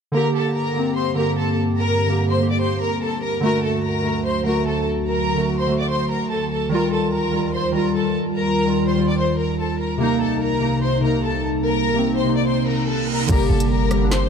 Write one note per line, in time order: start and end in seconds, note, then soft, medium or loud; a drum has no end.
0.12 3.40 G2 medium
0.12 0.60 D3 loud
0.12 3.40 D3 medium
0.12 0.61 A#3 medium
0.12 3.40 A#3 medium
0.12 3.40 G4 medium
0.12 0.33 A#4 loud
0.12 0.33 A#5 medium
0.17 0.63 G4 loud
0.35 0.54 A4 medium
0.35 0.54 A5 medium
0.55 0.94 A#4 medium
0.55 0.94 A#5 medium
0.74 1.06 D3 medium
0.74 1.07 A#3 medium
0.79 1.09 C4 medium
0.97 1.15 C5 medium
0.97 1.16 C6 medium
1.15 1.79 D3 medium
1.15 1.80 A#3 medium
1.15 1.36 A#4 medium
1.15 1.36 A#5 medium
1.20 1.81 G4 medium
1.38 1.56 A4 medium
1.38 1.57 A5 medium
1.79 2.27 A#4 loud
1.79 2.27 A#5 medium
2.07 2.32 D3 medium
2.07 2.33 A#3 medium
2.12 2.34 G4 medium
2.30 2.49 C5 medium
2.30 2.49 C6 medium
2.38 3.02 D3 medium
2.38 3.03 A#3 medium
2.43 3.05 G4 medium
2.51 2.60 D5 medium
2.51 2.60 D6 medium
2.61 2.79 C5 medium
2.61 2.80 C6 medium
2.81 3.00 A#4 medium
2.81 3.00 A#5 medium
3.02 3.21 A4 medium
3.02 3.21 A5 medium
3.22 3.41 A#4 medium
3.22 3.42 A#5 medium
3.41 6.69 D2 medium
3.41 3.89 D3 medium
3.41 6.69 D3 medium
3.41 6.69 F#3 medium
3.41 3.90 A3 medium
3.41 6.69 F#4 medium
3.41 3.62 A#4 loud
3.41 3.62 A#5 medium
3.46 3.92 F#4 loud
3.64 3.82 A4 medium
3.64 3.83 A5 medium
3.84 4.23 A#4 medium
3.84 4.23 A#5 medium
4.02 4.35 D3 medium
4.02 4.36 A3 medium
4.07 4.38 F#4 medium
4.25 4.44 C5 medium
4.25 4.44 C6 medium
4.43 5.07 D3 medium
4.43 5.09 A3 medium
4.43 4.64 A#4 medium
4.43 4.65 A#5 medium
4.48 5.10 F#4 medium
4.66 4.85 A4 medium
4.66 4.85 A5 medium
5.07 5.56 A#4 medium
5.07 5.56 A#5 medium
5.36 5.61 D3 medium
5.36 5.62 A3 medium
5.41 5.63 F#4 medium
5.59 5.77 C5 medium
5.59 5.78 C6 medium
5.67 6.31 D3 medium
5.67 6.32 A3 medium
5.72 6.33 F#4 medium
5.79 5.89 D5 medium
5.79 5.89 D6 medium
5.90 6.08 C5 medium
5.90 6.09 C6 medium
6.10 6.29 A#4 medium
6.10 6.29 A#5 medium
6.31 6.49 A4 medium
6.31 6.50 A5 medium
6.51 6.70 A4 medium
6.51 6.70 A5 medium
6.69 9.97 D#2 medium
6.69 7.18 D#3 medium
6.69 9.97 D#3 medium
6.69 7.19 G3 medium
6.69 9.97 G3 medium
6.69 9.97 F4 medium
6.69 6.90 A#4 loud
6.69 6.91 A#5 medium
6.74 7.20 F4 loud
6.92 7.11 A4 medium
6.92 7.11 A5 medium
7.13 7.52 A#4 medium
7.13 7.52 A#5 medium
7.31 7.64 D#3 medium
7.31 7.65 G3 medium
7.36 7.66 F4 medium
7.54 7.73 C5 medium
7.54 7.73 C6 medium
7.72 8.36 D#3 medium
7.72 8.38 G3 medium
7.72 7.93 A#4 medium
7.72 7.94 A#5 medium
7.77 8.39 F4 medium
7.95 8.14 A4 medium
7.95 8.14 A5 medium
8.36 8.84 A#4 loud
8.36 8.85 A#5 medium
8.65 8.89 D#3 medium
8.65 8.91 G3 medium
8.70 8.92 F4 medium
8.88 9.06 C5 medium
8.88 9.07 C6 medium
8.95 9.60 D#3 medium
8.95 9.61 G3 medium
9.00 9.62 F4 medium
9.08 9.18 D5 medium
9.08 9.18 D6 medium
9.18 9.37 C5 medium
9.18 9.37 C6 medium
9.39 9.58 A#4 medium
9.39 9.58 A#5 medium
9.59 9.78 A4 medium
9.59 9.78 A5 medium
9.80 9.99 A#4 medium
9.80 9.99 A#5 medium
9.98 13.26 C2 medium
9.98 10.46 C3 medium
9.98 13.26 C3 medium
9.98 10.48 A#3 medium
9.98 13.26 A#3 medium
9.98 13.26 D#4 medium
9.98 10.19 A#4 medium
9.98 10.20 A#5 medium
10.03 10.49 D#4 loud
10.21 10.40 A4 medium
10.21 10.40 A5 medium
10.42 10.80 A#4 medium
10.42 10.81 A#5 medium
10.60 10.92 C3 medium
10.60 10.94 A#3 medium
10.65 10.95 D#4 medium
10.83 11.01 C5 medium
10.83 11.02 C6 medium
11.01 11.65 C3 medium
11.01 11.66 A#3 medium
11.01 11.22 A#4 medium
11.01 11.22 A#5 medium
11.06 11.68 D#4 medium
11.24 11.43 A4 medium
11.24 11.43 A5 medium
11.65 12.13 A#4 loud
11.65 12.14 A#5 medium
11.93 12.18 C3 medium
11.93 12.19 A#3 medium
11.98 12.21 C4 medium
12.16 12.35 C5 medium
12.16 12.35 C6 medium
12.24 12.88 C3 medium
12.24 12.90 A#3 medium
12.29 12.91 D#4 medium
12.37 12.46 D5 medium
12.37 12.47 D6 medium
12.47 12.66 C5 medium
12.47 12.66 C6 medium
12.47 reverse cymbal medium
12.68 12.86 A#4 medium
12.68 12.87 A#5 medium
12.88 13.07 A4 medium
12.88 13.07 A5 medium
13.09 13.27 A#4 medium
13.09 13.28 A#5 medium
13.27 13.49 G1 loud
13.27 13.75 D3 medium
13.27 13.76 G3 medium
13.27 14.29 G3 medium
13.27 13.77 A#3 medium
13.27 14.29 G4 medium
13.27 13.48 A#4 loud
13.27 14.29 A#4 medium
13.27 14.29 D5 medium
13.27 13.48 A#5 medium
13.27 kick loud
13.27 closed hi-hat medium
13.27 crash loud
13.27 impact medium
13.32 13.78 G4 loud
13.50 14.29 G1 loud
13.50 13.69 A4 medium
13.50 13.69 A5 medium
13.60 closed hi-hat loud
13.70 14.09 A#4 medium
13.70 14.10 A#5 medium
13.88 13.98 D3 medium
13.88 13.98 G3 medium
13.88 13.99 A#3 medium
13.88 cross-stick medium
13.88 closed hi-hat medium
13.93 14.00 G4 medium
13.99 14.24 D3 medium
13.99 14.24 G3 medium
13.99 14.25 A#3 medium
14.04 14.26 D4 medium
14.12 14.29 C5 medium
14.12 14.29 C6 medium
14.12 snare loud
14.12 closed hi-hat medium